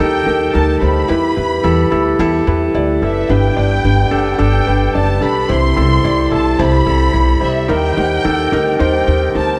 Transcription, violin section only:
0.00 0.51 G5 loud
0.55 0.82 A5 medium
0.82 2.43 B5 medium
3.03 3.28 E5 medium
3.30 4.39 G5 loud
4.41 4.91 G5 loud
4.96 5.21 A5 medium
5.24 5.50 B5 medium
5.52 6.33 C6 loud
6.34 6.58 A5 loud
6.61 7.43 B5 loud
7.44 7.71 E5 medium
7.71 8.77 G5 loud
8.81 9.32 G5 medium
9.37 9.59 A5 medium

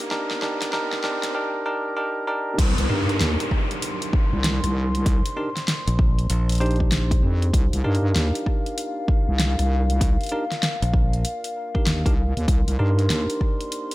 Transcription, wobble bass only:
2.58 2.75 C2 loud
2.78 2.88 C2 medium
2.90 3.19 G2 loud
3.21 3.37 D#2 medium
4.33 4.60 C2 loud
4.64 5.22 C2 loud
7.23 7.52 F2 loud
7.53 7.70 C2 loud
7.73 7.83 C2 loud
7.85 8.14 G2 loud
8.15 8.32 D#2 loud
9.28 9.56 C2 loud
9.59 10.17 C2 loud
12.06 12.34 C2 loud
12.37 12.46 D#2 loud
12.48 12.65 C2 loud
12.68 12.77 C2 loud
12.79 13.08 G2 loud
13.10 13.27 D#2 loud

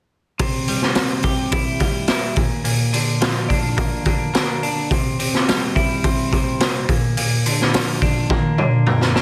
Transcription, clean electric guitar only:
0.39 1.81 C3 medium
0.68 1.79 G3 medium
0.95 2.37 C4 medium
1.24 2.37 G4 medium
1.52 2.07 E4 medium
1.80 2.37 G3 medium
2.08 2.37 E4 medium
2.36 2.63 A#2 medium
2.64 4.06 A#2 medium
2.93 4.06 D3 medium
3.21 4.62 F3 medium
3.49 4.62 D4 medium
3.77 4.33 A#3 medium
4.07 4.91 D3 medium
4.34 4.90 A#3 medium
4.63 4.91 D4 medium
4.91 5.18 C3 medium
5.19 6.31 C3 medium
5.48 6.89 G3 medium
5.76 6.88 E4 medium
6.04 6.59 C4 medium
6.32 6.88 C3 medium
6.61 6.88 C4 medium
6.89 7.16 A#2 medium
7.17 8.58 A#2 medium
7.46 8.58 D3 medium
7.74 9.14 F3 medium
8.02 9.15 D4 medium
8.30 8.86 A#3 medium
8.59 9.22 D3 medium
8.87 9.22 A#3 medium
9.16 9.22 D4 medium

